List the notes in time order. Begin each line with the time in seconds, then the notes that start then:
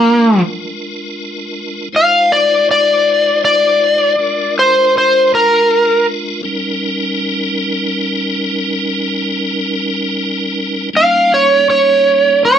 Already playing: G#3 A#3 D4 F4 A#4
1.93 G#3 D#4 F4 C5 F5
2.32 D5
2.71 D5
3.45 D5
4.18 G#3 D4 F4 A#4
4.59 C5
4.98 C5
5.35 A#4
6.43 G3 C#4 D#4 A#4
10.93 G3 A#3 C#4 D#4 F5
11.34 C#5
11.70 C#5
12.45 C#5